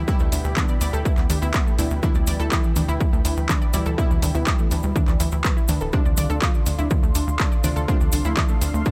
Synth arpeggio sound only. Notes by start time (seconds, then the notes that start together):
0.08 E4
0.20 A3
0.32 D4
0.57 D4
0.69 D5
0.81 D5
0.93 A4
1.05 E4
1.30 D4
1.42 E4
1.54 E4
1.66 A3
1.78 D4
2.03 D4
2.15 D5
2.27 D5
2.40 A4
2.52 E4
2.76 D4
2.88 E4
3.00 E4
3.13 A3
3.25 D4
3.49 D4
3.62 D5
3.74 D5
3.86 A4
3.98 E4
4.22 D4
4.35 E4
4.47 E4
4.59 A3
4.71 D4
4.96 D4
5.08 D5
5.20 E4
5.32 E4
5.44 B4
5.57 E4
5.69 D4
5.81 A4
5.93 D4
6.05 D5
6.18 D5
6.30 A4
6.42 F4
6.66 D4
6.79 E4
6.91 E4
7.03 A3
7.15 D4
7.40 D4
7.52 D5
7.64 D5
7.76 A4
7.88 F4
8.13 D4
8.25 E4
8.37 E4
8.49 A3
8.61 D4
8.86 D4